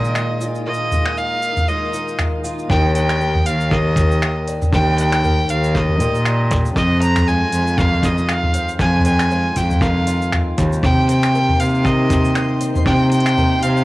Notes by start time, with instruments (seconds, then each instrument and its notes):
Already playing: cello A#2, twelve-string acoustic guitar A#2 G#3 D#4 F4, ambient pad D#3 A#3 G#4, synth texture D#4 D#6, violin D#5
0.05 shaker
0.15 finger snap, shaker
0.41 twelve-string acoustic guitar F4, shaker
0.55 shaker
0.66 twelve-string acoustic guitar A#2 F4, ambient pad A#4, violin D#5
0.74 shaker
0.91 twelve-string acoustic guitar G#3, mid tom, shaker
1.05 finger snap
1.17 violin F5, shaker
1.42 shaker
1.56 mid tom, shaker
1.68 twelve-string acoustic guitar G#3 D#4 F4, violin D#5, shaker
1.94 twelve-string acoustic guitar D#4, shaker
2.08 shaker
2.19 finger snap, mid tom, shaker
2.44 twelve-string acoustic guitar F4, shaker
2.59 shaker
2.69 cello D#2, twelve-string acoustic guitar D#3, violin G5, kick, mid tom, shaker
2.95 twelve-string acoustic guitar D4, violin G5, closed hi-hat, shaker
3.09 finger snap, shaker
3.20 twelve-string acoustic guitar A#3 G4, shaker
3.35 mid tom
3.46 cello D#2, violin F5, closed hi-hat, shaker
3.60 shaker
3.71 twelve-string acoustic guitar A#3, violin D#5, kick, shaker
3.96 twelve-string acoustic guitar G4, kick, closed hi-hat, mid tom, shaker
4.11 shaker
4.22 finger snap, shaker
4.48 twelve-string acoustic guitar D4, closed hi-hat, shaker
4.62 mid tom, shaker
4.73 cello D#2, twelve-string acoustic guitar D#3, violin G5, kick, shaker
4.98 twelve-string acoustic guitar D4, violin G5, closed hi-hat, shaker
5.13 finger snap, shaker
5.24 twelve-string acoustic guitar A#3 G4, mid tom, shaker
5.49 cello D#2, violin F5, closed hi-hat, shaker
5.64 shaker
5.75 twelve-string acoustic guitar A#3, violin D#5, kick, shaker
5.89 mid tom
6.00 cello A#2, twelve-string acoustic guitar G4, closed hi-hat, shaker
6.14 cello A#2, shaker
6.25 finger snap, shaker
6.51 twelve-string acoustic guitar D4, kick, closed hi-hat, mid tom, shaker
6.66 shaker
6.76 cello F2, twelve-string acoustic guitar F2, violin D#5, kick, shaker
7.02 twelve-string acoustic guitar C4, violin A#5, closed hi-hat, shaker
7.16 finger snap, mid tom, shaker
7.27 twelve-string acoustic guitar G#3 C4 F4, violin G#5, shaker
7.52 cello F2, closed hi-hat, shaker
7.67 shaker
7.78 twelve-string acoustic guitar D#3, violin F5, kick, mid tom, shaker
8.03 twelve-string acoustic guitar F4, violin D#5, kick, closed hi-hat, shaker
8.18 shaker
8.29 violin F5, finger snap, shaker
8.43 mid tom
8.54 twelve-string acoustic guitar C4, closed hi-hat, shaker
8.69 shaker
8.79 cello F2, twelve-string acoustic guitar F2, violin G#5, kick, shaker
8.99 mid tom
9.05 twelve-string acoustic guitar C4, violin G#5, closed hi-hat, shaker
9.19 finger snap, shaker
9.31 twelve-string acoustic guitar G#3 C4 F4, shaker
9.56 cello F2, violin G5, kick, closed hi-hat, shaker
9.70 mid tom, shaker
9.81 twelve-string acoustic guitar D#3, violin F5, kick, shaker
10.07 twelve-string acoustic guitar F4, closed hi-hat, shaker
10.22 shaker
10.32 finger snap, mid tom, shaker
10.58 cello D#2, twelve-string acoustic guitar C4, kick, closed hi-hat, shaker
10.73 shaker
10.83 cello C3, twelve-string acoustic guitar C3, ambient pad C3 A#3 D#4, synth texture C5 C6, violin G5, kick, mid tom, shaker
11.08 twelve-string acoustic guitar C4, violin G5, closed hi-hat, shaker
11.23 finger snap, shaker
11.34 twelve-string acoustic guitar A#3 C4 G4, shaker
11.48 mid tom
11.60 cello C3, violin F5, closed hi-hat, shaker
11.65 shaker
11.74 shaker
11.84 twelve-string acoustic guitar D#3, violin D#5, kick, shaker
12.10 twelve-string acoustic guitar G4, kick, closed hi-hat, mid tom, shaker
12.25 shaker
12.35 finger snap, shaker
12.61 twelve-string acoustic guitar C4, closed hi-hat, shaker
12.75 mid tom, shaker
12.86 cello C3, twelve-string acoustic guitar C3, violin G5, kick, shaker
13.12 twelve-string acoustic guitar C4, violin G5, closed hi-hat, shaker
13.20 closed hi-hat
13.26 finger snap, closed hi-hat, shaker
13.37 twelve-string acoustic guitar A#3 C4 G4, mid tom, shaker
13.62 cello C3, violin F5, closed hi-hat, shaker
13.77 shaker